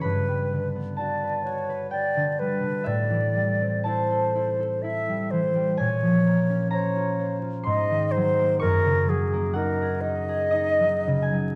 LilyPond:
<<
  \new Staff \with { instrumentName = "Flute" } { \time 3/4 \key a \lydian \tempo 4 = 63 b'8 r8 d''8 cis''8 d''8 b'8 | d''4 c''4 e''8 c''8 | \key ges \lydian des''4 des''8 r8 ees''8 c''8 | bes'8 aes'8 bes'8 ees''4. | }
  \new Staff \with { instrumentName = "Harp" } { \time 3/4 \key a \lydian <fis'' b''>4 a''4 g''4 | e''4 a''2 | \key ges \lydian aes''4 bes''4 c'''4 | des'''4 ges''4 \tuplet 3/2 { ees''4 aes''8 } | }
  \new Staff \with { instrumentName = "Harp" } { \time 3/4 \key a \lydian <g, fis'>16 g16 d16 b16 fis'16 b'16 fis'16 b'16 fis'16 d16 g16 d16 | a,16 e16 g16 c'16 e'16 a'16 e'16 a'16 e'16 g16 e16 g16 | \key ges \lydian bes,16 f16 bes16 des'16 c''16 f'16 c''16 f'16 aes,16 ees16 ges16 bes16 | ges,16 des16 ges16 bes16 ees'16 aes'16 ees'16 aes'16 ees'16 ges16 des16 ges16 | }
>>